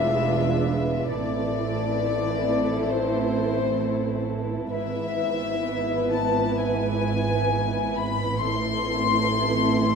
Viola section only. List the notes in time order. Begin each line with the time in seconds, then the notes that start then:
Already playing: G#3 D4
1.10 E3 C4
4.71 E3 B3
8.41 E3 C4